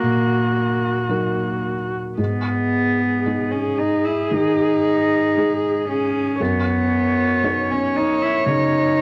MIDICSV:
0, 0, Header, 1, 4, 480
1, 0, Start_track
1, 0, Key_signature, 5, "minor"
1, 0, Tempo, 1073345
1, 977, Time_signature, 4, 2, 24, 8
1, 1456, Tempo, 1050788
1, 2416, Tempo, 1039861
1, 3376, Tempo, 1010101
1, 4125, End_track
2, 0, Start_track
2, 0, Title_t, "Viola"
2, 0, Program_c, 0, 41
2, 0, Note_on_c, 0, 66, 62
2, 869, Note_off_c, 0, 66, 0
2, 981, Note_on_c, 0, 68, 58
2, 2879, Note_off_c, 0, 68, 0
2, 2898, Note_on_c, 0, 73, 63
2, 4125, Note_off_c, 0, 73, 0
2, 4125, End_track
3, 0, Start_track
3, 0, Title_t, "Cello"
3, 0, Program_c, 1, 42
3, 0, Note_on_c, 1, 58, 80
3, 737, Note_off_c, 1, 58, 0
3, 974, Note_on_c, 1, 59, 74
3, 1569, Note_on_c, 1, 61, 59
3, 1576, Note_off_c, 1, 59, 0
3, 1698, Note_on_c, 1, 63, 72
3, 1704, Note_off_c, 1, 61, 0
3, 1817, Note_on_c, 1, 64, 65
3, 1824, Note_off_c, 1, 63, 0
3, 1941, Note_on_c, 1, 63, 86
3, 1948, Note_off_c, 1, 64, 0
3, 2657, Note_off_c, 1, 63, 0
3, 2659, Note_on_c, 1, 61, 74
3, 2902, Note_on_c, 1, 59, 84
3, 2909, Note_off_c, 1, 61, 0
3, 3504, Note_on_c, 1, 61, 72
3, 3511, Note_off_c, 1, 59, 0
3, 3624, Note_on_c, 1, 63, 82
3, 3631, Note_off_c, 1, 61, 0
3, 3745, Note_on_c, 1, 64, 79
3, 3752, Note_off_c, 1, 63, 0
3, 3858, Note_on_c, 1, 63, 97
3, 3865, Note_off_c, 1, 64, 0
3, 4125, Note_off_c, 1, 63, 0
3, 4125, End_track
4, 0, Start_track
4, 0, Title_t, "Felt piano"
4, 0, Program_c, 2, 0
4, 0, Control_c, 2, 64, 127
4, 0, Note_on_c, 2, 54, 38
4, 0, Note_on_c, 2, 63, 41
4, 0, Note_on_c, 2, 70, 43
4, 11, Note_on_c, 2, 46, 42
4, 487, Note_off_c, 2, 54, 0
4, 487, Note_on_c, 2, 54, 31
4, 489, Note_off_c, 2, 63, 0
4, 489, Note_on_c, 2, 63, 33
4, 490, Note_off_c, 2, 70, 0
4, 490, Note_on_c, 2, 70, 34
4, 781, Note_off_c, 2, 46, 0
4, 957, Note_off_c, 2, 54, 0
4, 958, Note_off_c, 2, 63, 0
4, 959, Note_off_c, 2, 70, 0
4, 973, Note_on_c, 2, 44, 45
4, 985, Control_c, 2, 64, 0
4, 1069, Control_c, 2, 64, 127
4, 1439, Note_off_c, 2, 44, 0
4, 1456, Note_on_c, 2, 56, 36
4, 1457, Note_on_c, 2, 63, 36
4, 1460, Note_on_c, 2, 68, 40
4, 1919, Note_off_c, 2, 56, 0
4, 1919, Note_off_c, 2, 63, 0
4, 1921, Note_off_c, 2, 68, 0
4, 1938, Note_on_c, 2, 51, 42
4, 2419, Note_on_c, 2, 56, 32
4, 2419, Note_on_c, 2, 63, 32
4, 2422, Note_on_c, 2, 68, 35
4, 2704, Note_off_c, 2, 51, 0
4, 2879, Note_off_c, 2, 56, 0
4, 2879, Note_off_c, 2, 63, 0
4, 2880, Note_off_c, 2, 68, 0
4, 2899, Note_on_c, 2, 42, 49
4, 2903, Control_c, 2, 64, 0
4, 2978, Control_c, 2, 64, 127
4, 3363, Note_off_c, 2, 42, 0
4, 3375, Note_on_c, 2, 59, 43
4, 3375, Note_on_c, 2, 63, 47
4, 3379, Note_on_c, 2, 73, 47
4, 3838, Note_off_c, 2, 59, 0
4, 3838, Note_off_c, 2, 63, 0
4, 3840, Note_off_c, 2, 73, 0
4, 3862, Note_on_c, 2, 49, 44
4, 4125, Note_off_c, 2, 49, 0
4, 4125, End_track
0, 0, End_of_file